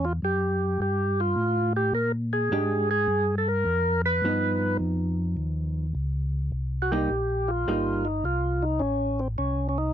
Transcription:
0.00 0.20 E2 medium
0.05 0.13 F4 medium
0.22 0.78 F#2 medium
0.22 0.80 G4 medium
0.79 1.35 G2 medium
0.79 1.21 G4 medium
1.20 1.73 F4 loud
1.36 1.92 A2 medium
1.76 1.93 G4 medium
1.93 2.49 A#2 medium
1.93 2.12 A#4 loud
2.33 2.90 G#4 medium
2.51 3.07 G#2 medium
2.51 2.87 G#3 medium
2.51 2.87 D4 medium
2.51 2.87 G4 medium
2.91 3.35 G#4 loud
3.08 3.64 G2 medium
3.38 3.48 A4 medium
3.48 4.02 A#4 medium
3.65 4.22 F2 medium
4.06 4.77 B4 loud
4.22 4.79 G2 medium
4.22 5.85 F3 medium
4.22 5.85 B3 medium
4.22 5.86 D#4 medium
4.79 5.36 F2 medium
5.37 5.93 D#2 medium
5.95 6.51 C#2 medium
6.52 7.08 C2 medium
6.82 6.92 F#4 medium
6.92 7.08 G3 medium
6.92 7.09 A#3 medium
6.92 7.09 D#4 medium
6.92 7.51 G4 medium
7.10 7.65 A#1 medium
7.48 8.07 F4 medium
7.67 8.23 G1 medium
7.67 8.03 G3 medium
7.67 8.03 A#3 medium
7.67 8.03 D#4 medium
8.05 8.24 D#4 medium
8.24 8.80 C2 medium
8.24 8.65 F4 medium
8.62 8.82 D#4 medium
8.79 9.36 A1 medium
8.79 9.21 C#4 medium
9.20 9.28 C4 medium
9.38 9.93 C2 medium
9.38 9.68 C#4 medium
9.69 9.78 C#4 medium
9.78 9.93 D#4 loud

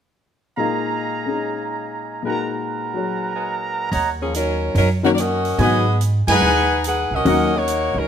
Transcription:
0.57 2.21 A#2 soft
0.57 1.24 G#3 soft
0.57 1.26 D#4 soft
0.57 2.25 F4 soft
0.57 2.26 A#4 soft
0.57 2.25 D#5 medium
0.57 2.25 F5 medium
0.57 2.24 G#5 medium
0.57 2.24 A#5 medium
1.26 2.22 G#3 soft
1.26 2.25 C#4 soft
1.26 2.24 D#4 soft
1.26 2.26 G#4 soft
2.23 3.91 A#2 soft
2.23 3.92 G#3 soft
2.23 3.92 D#4 soft
2.23 2.93 F#4 soft
2.23 3.92 A#4 medium
2.23 3.35 B4 medium
2.23 3.35 F#5 medium
2.23 3.35 G#5 medium
2.23 3.91 A#5 medium
2.27 3.93 A#4 soft
2.94 3.92 F#3 soft
2.94 3.92 F#4 soft
2.94 3.93 G#4 soft
2.94 3.94 C#5 soft
3.36 3.92 B4 medium
3.36 3.91 D#5 medium
3.36 3.91 F#5 medium
3.36 3.92 G#5 medium
3.92 4.71 D#2 medium
3.92 4.11 C#5 medium
3.92 4.11 D#5 medium
3.92 4.11 F#5 medium
3.92 4.11 A#5 medium
3.92 kick soft
3.92 open hi-hat soft
4.21 4.34 F3 medium
4.21 4.34 A#3 medium
4.21 4.34 C#4 medium
4.21 4.34 G#4 medium
4.34 4.74 F#3 medium
4.34 4.74 C#4 medium
4.34 4.74 D#4 medium
4.34 4.74 A#4 medium
4.34 closed hi-hat medium
4.75 5.55 F#2 medium
4.75 4.89 F#3 medium
4.75 4.89 C#4 medium
4.75 4.89 D#4 medium
4.75 4.89 A#4 medium
4.75 kick soft
4.75 open hi-hat soft
5.03 5.16 D#3 medium
5.03 5.16 F#3 medium
5.03 5.16 A#3 medium
5.03 5.09 A#3 medium
5.03 5.16 C#4 soft
5.03 5.09 D#4 medium
5.03 5.16 F#4 medium
5.03 5.09 F#4 medium
5.03 5.09 C#5 medium
5.15 5.19 D5 medium
5.15 closed hi-hat medium
5.20 5.60 C#4 medium
5.20 5.60 F#4 medium
5.20 5.60 A#4 medium
5.20 5.60 D#5 medium
5.45 open hi-hat soft
5.59 6.24 G#2 medium
5.59 5.84 D#3 soft
5.59 5.84 F#3 soft
5.59 5.84 G#3 soft
5.59 5.84 B3 soft
5.59 5.99 B3 medium
5.59 5.84 F#4 medium
5.59 5.99 F#4 medium
5.59 5.99 G#4 medium
5.59 5.77 B4 medium
5.59 5.77 D#5 medium
5.59 5.99 D#5 loud
5.59 5.77 F#5 medium
5.59 5.77 G#5 medium
5.59 kick soft
5.59 open hi-hat soft
6.01 closed hi-hat medium
6.27 6.41 F#2 medium
6.27 6.81 D#4 loud
6.27 6.81 G#4 loud
6.27 6.81 B4 loud
6.27 6.82 B4 loud
6.27 6.81 D#5 medium
6.27 6.81 F#5 medium
6.27 6.81 F#5 loud
6.27 6.81 G#5 loud
6.27 snare medium
6.27 ride medium
6.41 7.07 D#2 medium
6.84 7.11 D#4 medium
6.84 7.11 G#4 medium
6.84 7.11 B4 medium
6.84 7.11 F#5 loud
6.84 closed hi-hat medium
7.11 7.25 C#2 medium
7.11 7.55 C#4 medium
7.11 7.55 F#4 medium
7.11 7.54 A#4 medium
7.11 7.54 D#5 loud
7.25 7.90 D#2 medium
7.25 7.50 D#3 medium
7.25 7.50 F#3 medium
7.25 7.50 A#3 medium
7.25 7.50 C#4 medium
7.25 7.50 F#4 medium
7.25 7.44 A#4 medium
7.25 7.44 C#5 medium
7.25 7.44 D#5 medium
7.25 7.44 F#5 medium
7.25 kick soft
7.25 open hi-hat medium
7.56 7.96 A#3 medium
7.56 7.96 D#4 medium
7.56 7.96 F#4 medium
7.56 7.96 C#5 loud
7.68 closed hi-hat medium
7.94 8.08 C#2 medium
7.94 8.08 F#3 medium
7.94 8.08 C#4 medium
7.94 8.08 D#4 medium
7.94 8.08 A#4 medium

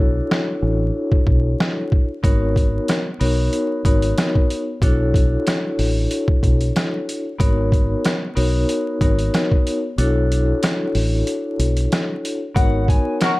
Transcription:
0.00 0.20 B1 loud
0.00 2.04 D4 loud
0.00 2.04 E4 medium
0.00 2.04 F#4 medium
0.00 2.05 A4 medium
0.00 2.05 C#5 loud
0.31 cross-stick loud
0.31 snare loud
0.63 0.90 A1 medium
1.12 kick medium
1.27 1.54 B1 medium
1.27 kick medium
1.60 cross-stick medium
1.60 snare loud
1.92 kick medium
2.23 2.78 G#1 loud
2.23 2.98 B3 medium
2.23 2.98 D#4 medium
2.23 2.99 F#4 medium
2.23 2.99 A#4 medium
2.23 2.99 C#5 loud
2.23 kick loud
2.23 closed hi-hat medium
2.56 kick loud
2.56 closed hi-hat medium
2.88 cross-stick loud
2.88 snare loud
2.88 closed hi-hat loud
3.20 3.48 B1 medium
3.20 3.80 B3 medium
3.20 3.80 D#4 medium
3.20 3.80 F#4 medium
3.20 3.80 A#4 medium
3.20 3.81 C#5 loud
3.20 open hi-hat medium
3.53 closed hi-hat medium
3.85 4.12 G#1 medium
3.85 4.60 B3 medium
3.85 4.60 D#4 medium
3.85 4.60 F#4 medium
3.85 4.61 A#4 medium
3.85 4.61 C#5 loud
3.85 kick medium
3.85 closed hi-hat medium
4.02 closed hi-hat medium
4.18 cross-stick medium
4.18 snare loud
4.18 closed hi-hat medium
4.35 kick loud
4.50 closed hi-hat medium
4.82 5.36 B1 loud
4.82 7.21 D4 loud
4.82 7.21 E4 medium
4.82 7.21 F#4 medium
4.82 7.21 A4 medium
4.82 7.21 C#5 loud
4.82 kick loud
4.82 closed hi-hat medium
5.14 kick loud
5.14 closed hi-hat medium
5.47 cross-stick loud
5.47 snare loud
5.47 closed hi-hat loud
5.79 6.06 A1 medium
5.79 open hi-hat medium
6.11 closed hi-hat medium
6.28 kick medium
6.43 6.70 B1 loud
6.43 kick medium
6.43 closed hi-hat medium
6.61 closed hi-hat medium
6.76 cross-stick medium
6.76 snare loud
6.76 closed hi-hat medium
7.09 closed hi-hat medium
7.39 7.94 G#1 loud
7.39 8.14 B3 loud
7.39 8.15 D#4 medium
7.39 8.15 F#4 medium
7.39 8.15 A#4 medium
7.39 8.15 C#5 loud
7.39 kick loud
7.39 closed hi-hat medium
7.72 kick loud
7.72 closed hi-hat medium
8.05 cross-stick loud
8.05 snare loud
8.05 closed hi-hat loud
8.35 8.64 B1 medium
8.35 8.96 B3 loud
8.35 8.96 D#4 medium
8.35 8.96 F#4 medium
8.35 8.96 A#4 medium
8.35 8.96 C#5 loud
8.35 open hi-hat medium
8.69 closed hi-hat medium
9.01 9.28 G#1 medium
9.01 9.76 B3 medium
9.01 9.76 D#4 medium
9.01 9.76 F#4 medium
9.01 9.77 A#4 medium
9.01 9.77 C#5 loud
9.01 kick medium
9.01 closed hi-hat medium
9.19 closed hi-hat medium
9.34 cross-stick medium
9.34 snare loud
9.34 closed hi-hat medium
9.52 kick medium
9.67 closed hi-hat medium
9.98 10.52 B1 loud
9.98 12.37 D4 medium
9.98 12.37 E4 medium
9.98 12.37 F#4 medium
9.98 12.37 A4 medium
9.98 12.37 C#5 loud
9.98 closed hi-hat medium
10.32 closed hi-hat medium
10.63 cross-stick loud
10.63 snare loud
10.63 closed hi-hat loud
10.95 11.22 A1 medium
10.95 open hi-hat medium
11.27 closed hi-hat medium
11.59 11.86 B1 medium
11.59 closed hi-hat medium
11.77 closed hi-hat medium
11.92 cross-stick medium
11.92 snare loud
11.92 closed hi-hat medium
12.25 closed hi-hat medium
12.55 12.98 G#1 loud
12.55 13.30 B3 loud
12.55 13.31 D#4 medium
12.55 13.31 F#4 medium
12.55 13.31 A#4 medium
12.55 13.31 C#5 loud
12.55 12.85 F#5 loud
12.55 kick loud
12.55 closed hi-hat medium
12.88 13.18 G#5 medium
12.88 kick loud
12.88 closed hi-hat medium
13.21 13.32 F#4 medium
13.21 13.32 A#4 loud
13.21 13.32 C#5 loud
13.21 13.40 F#5 medium
13.21 cross-stick loud
13.21 snare loud
13.21 closed hi-hat loud

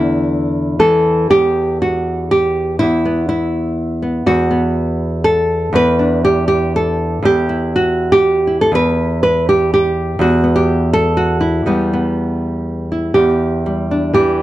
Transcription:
0.00 1.29 E2 medium
0.00 0.79 D3 medium
0.00 0.79 E4 medium
0.79 1.27 E3 medium
0.79 1.30 A4 loud
1.30 2.79 E2 medium
1.30 1.80 G4 loud
1.82 2.31 F#4 medium
2.31 2.79 G4 medium
2.79 4.25 E2 medium
2.79 3.28 E4 medium
3.05 4.02 B3 soft
3.29 4.26 E4 medium
4.02 4.50 B3 soft
4.26 5.71 E2 medium
4.26 5.24 F#4 loud
4.51 5.99 B3 soft
5.24 5.73 A4 medium
5.73 7.21 E2 medium
5.73 6.24 B4 loud
5.99 7.20 D4 soft
6.25 6.47 G4 medium
6.48 6.72 G4 medium
6.76 7.24 A4 medium
7.22 8.71 E2 medium
7.22 8.11 G4 loud
7.49 7.75 E4 soft
7.76 8.47 F#4 medium
8.12 8.60 G4 loud
8.47 8.68 E4 soft
8.61 8.72 A4 medium
8.72 10.18 E2 medium
8.72 9.22 B4 loud
9.23 9.46 B4 medium
9.49 9.71 G4 medium
9.74 10.21 G4 medium
10.19 11.65 E2 medium
10.19 11.06 F#4 medium
10.44 11.67 B3 soft
10.56 10.93 G4 medium
10.93 11.40 A4 loud
11.17 11.66 F#4 medium
11.41 12.90 E4 medium
11.66 13.14 E2 medium
11.66 13.13 G3 soft
11.66 11.91 B3 medium
11.93 13.14 B3 soft
12.92 13.13 E4 soft
13.14 14.43 E2 medium
13.14 14.13 G4 medium
13.66 14.43 G3 soft
13.91 14.43 D4 soft
14.13 14.43 E3 medium
14.13 14.43 G4 medium

